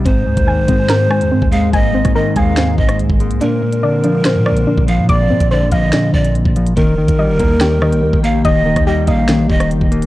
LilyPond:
<<
  \new Staff \with { instrumentName = "Pan flute" } { \time 4/4 \key bes \mixolydian \tempo 4 = 143 c''2.~ c''8 f''8 | ees''4 ees''8 f''4 ees''8 r4 | bes'2.~ bes'8 f''8 | d''4 d''8 ees''4 d''8 r4 |
bes'2.~ bes'8 f''8 | ees''4 ees''8 f''4 ees''8 r4 | }
  \new Staff \with { instrumentName = "Synth pluck" } { \time 4/4 \key bes \mixolydian c'4 aes''8 c'8 bes'8 aes''8 c'4 | aes''8 c'8 bes'8 aes''8 c'2 | d'4 d''8 d'8 c''8 d''8 d'4 | d'''8 c'8 c''8 f''8 d'2 |
bes4 ees''8 bes8 g'8 ees''8 bes4 | ees''8 bes8 g'8 ees''8 bes2 | }
  \new Staff \with { instrumentName = "Ambient pad" } { \time 4/4 \key bes \mixolydian << { <aes c'>1~ | <aes c'>1 | <d c'>1~ | <d c'>1 |
<ees g'>1~ | <ees g'>1 | } \\ { bes1~ | bes1~ | bes1~ | bes1 |
bes1~ | bes1 | } >> }
  \new Staff \with { instrumentName = "Clean electric guitar" } { \clef bass \time 4/4 \key bes \mixolydian aes,8 aes,8 ees8 aes8 aes,8 aes,4 aes8 | aes,8 aes,8 ees8 aes8 aes,8 aes,4 aes8 | bes,8 bes,8 d8 f8 bes,8 bes,4 f8 | bes,8 bes,8 d8 f8 bes,8 bes,4 f8 |
ees8 ees8 g8 bes8 ees8 ees4 bes8 | ees8 ees8 g8 bes8 ees8 ees4 bes8 | }
  \new Staff \with { instrumentName = "808-style bass" } { \clef bass \time 4/4 \key bes \mixolydian aes,,8 ees,16 ees,8 bes,,16 aes,4~ aes,16 ees,16 aes,16 ees,8. | aes,,8. aes,8. ees,4 aes,,8 c,16 aes,,8 c,16 | r2 r16 bes,16. bes,,16. r16 bes,,8 bes,16 | bes,,8 bes,16 bes,,8 aes,,16 bes,,8 r8 bes,,8. bes,,8 aes,,16 |
r8 bes,,16 bes,,8 f,,16 ees,4~ ees,16 bes,,16 ees,16 bes,,8. | ees,,8. ees,8. bes,,4 ees,,8 g,,16 ees,,8 g,,16 | }
  \new DrumStaff \with { instrumentName = "Drums" } \drummode { \time 4/4 <hh bd>8. <hh bd>16 r8 <hh bd>8 <hh sn>8 ss16 hh16 r16 bd16 hh8 | <hh bd>8. <hh bd ss>16 r8 <hh bd>8 <hh sn>8 bd16 <hh ss>16 hh16 bd16 hh16 hh16 | hh8. hh16 r8 hh8 <hh sn>8 ss16 hh16 r16 bd16 hh8 | <hh bd>8. <hh bd>16 r8 <hh bd>8 <hh sn>8 bd16 hh16 hh16 bd16 hh16 hh16 |
<hh bd>8. <hh bd>16 r8 <hh bd>8 <hh sn>8 ss16 hh16 r16 bd16 hh8 | <hh bd>8. <hh bd ss>16 r8 <hh bd>8 <hh sn>8 bd16 <hh ss>16 hh16 bd16 hh16 hh16 | }
>>